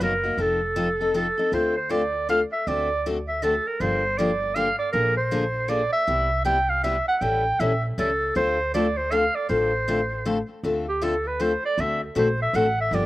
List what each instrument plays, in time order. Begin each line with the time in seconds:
0.00 upright bass F#1, steel-string acoustic guitar B2 F#3 A#3 D#4 F#4, clarinet A#4
0.24 steel-string acoustic guitar A#3 D#4 F#4
0.37 upright bass F1, steel-string acoustic guitar F3 C4 D#4 A4, clarinet A4
0.76 steel-string acoustic guitar F3 C4 D#4 A4
1.01 steel-string acoustic guitar C4 D#4 A4
1.14 steel-string acoustic guitar F3 C4 D#4 A4, clarinet A4
1.38 steel-string acoustic guitar C4 D#4 A4
1.52 upright bass D2, steel-string acoustic guitar D3 A3 C4 F4 A4, clarinet C5
1.77 clarinet C5
1.89 steel-string acoustic guitar D3 A3 C4 F4 A4, clarinet D5
2.29 steel-string acoustic guitar D3 A3 C4 F4 A4, clarinet F5
2.53 clarinet E5
2.67 upright bass D2, steel-string acoustic guitar D3 A3 C4 F#4 A4, clarinet D5
3.06 steel-string acoustic guitar D3 A3 C4 F#4 A4
3.28 clarinet E5
3.42 steel-string acoustic guitar D3 A3 C4 F#4 A4, clarinet A4
3.67 clarinet A#4
3.80 upright bass G1, steel-string acoustic guitar D3 F3 A#3 D4 G4, clarinet C5
4.18 steel-string acoustic guitar D3 F3 A#3 D4 G4, clarinet D5
4.55 steel-string acoustic guitar D3 F3 A#3 D4 G4, clarinet F5
4.78 clarinet D5
4.92 upright bass A#1, steel-string acoustic guitar D3 F3 A#3 D4 G#4, clarinet A#4
5.17 clarinet C5
5.31 steel-string acoustic guitar D3 F3 A#3 D4 G#4
5.68 steel-string acoustic guitar D3 F3 A#3 D4 G#4, clarinet D5
5.93 clarinet E5
6.07 upright bass C2, steel-string acoustic guitar C3 G3 B3 E4 G4
6.45 steel-string acoustic guitar C3 G3 B3 E4 G4, clarinet G5
6.70 clarinet F5
6.84 steel-string acoustic guitar C3 G3 B3 E4 G4, clarinet E5
7.08 clarinet F#5
7.18 upright bass A1, steel-string acoustic guitar E3 G3, clarinet F#5 G5
7.22 steel-string acoustic guitar C#4 E4 A4
7.60 upright bass A#1, steel-string acoustic guitar E3 G3 C#4 E4 A4, clarinet E5
7.98 upright bass C#2, steel-string acoustic guitar E3 G3 C#4 E4 A4, clarinet A4
8.35 upright bass D2, steel-string acoustic guitar D3 A3 C4 F4 A4, clarinet C5
8.74 steel-string acoustic guitar D3 A3 C4 F4 A4, clarinet D5
8.97 clarinet C5
9.11 steel-string acoustic guitar D3 A3 C4 F4 A4, clarinet F5
9.35 clarinet D5
9.49 upright bass A1, steel-string acoustic guitar D3 A3 C4 F4 A4, clarinet C5
9.88 steel-string acoustic guitar D3 A3 C4 F4 A4
10.25 steel-string acoustic guitar D3 A3 C4 F4 A4
10.63 upright bass D2, steel-string acoustic guitar D3 A3 C4 F4 A4
10.89 clarinet G4
11.01 steel-string acoustic guitar D3 A3 C4 F4 A4, clarinet A4
11.27 clarinet B4
11.40 steel-string acoustic guitar D3 A3 C4 F4 A4, clarinet C5
11.65 clarinet D5
11.78 upright bass D2, steel-string acoustic guitar D3 A3 C4 F#4 A4, clarinet E5
12.04 clarinet A4
12.15 upright bass A#1, steel-string acoustic guitar D3 A3 C4 F#4 A4, clarinet C5
12.42 clarinet E5
12.53 upright bass A1, steel-string acoustic guitar D3 A3 C4 F#4 A4, clarinet F#5
12.81 clarinet E5
12.91 upright bass G1, steel-string acoustic guitar D3 F3 A#3 D4 G4, clarinet D5